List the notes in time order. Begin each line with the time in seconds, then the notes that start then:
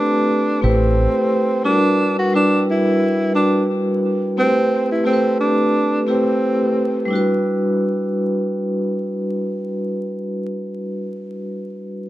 Already playing: A3 C4 D4 E4 G4 A4 B4
0.61 A1 A3 C4 E4 G4 B4
1.64 G3 D4 E4 F#4 A#4
1.73 B4
2.19 F#4
2.33 G3 D4 E4 F#4 B4
2.71 E4
3.34 G3 D4 E4 F#4 B4
4.37 A3 C4 E4 G4 B4
4.91 E4
5.04 A3 C4 E4 G4 A4
5.13 B4
5.40 D4
6.06 A3 C4 E4 G4 B4
7.06 G3 D4
7.11 E4 F#4
7.16 B4